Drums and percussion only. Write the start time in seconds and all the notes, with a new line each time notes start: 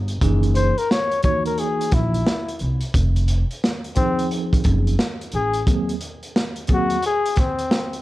0.08 closed hi-hat
0.21 kick, closed hi-hat
0.43 closed hi-hat
0.55 closed hi-hat
0.78 closed hi-hat
0.91 snare
1.12 closed hi-hat
1.23 kick, closed hi-hat
1.46 closed hi-hat
1.58 closed hi-hat
1.81 closed hi-hat
1.92 kick, snare, closed hi-hat
2.14 closed hi-hat
2.27 snare
2.49 closed hi-hat
2.59 closed hi-hat
2.81 closed hi-hat
2.94 kick, closed hi-hat
3.16 closed hi-hat
3.28 closed hi-hat
3.51 closed hi-hat
3.64 snare
3.84 closed hi-hat
3.96 kick, closed hi-hat
4.19 closed hi-hat
4.31 closed hi-hat
4.53 kick, closed hi-hat
4.64 kick, closed hi-hat
4.87 closed hi-hat
4.99 snare
5.21 closed hi-hat
5.32 closed hi-hat
5.54 closed hi-hat
5.67 kick, closed hi-hat
5.89 closed hi-hat
6.01 closed hi-hat
6.23 closed hi-hat
6.36 snare
6.56 closed hi-hat
6.67 kick, closed hi-hat
6.90 closed hi-hat
7.02 closed hi-hat
7.26 closed hi-hat
7.36 kick, snare, closed hi-hat
7.59 closed hi-hat
7.71 snare
7.93 closed hi-hat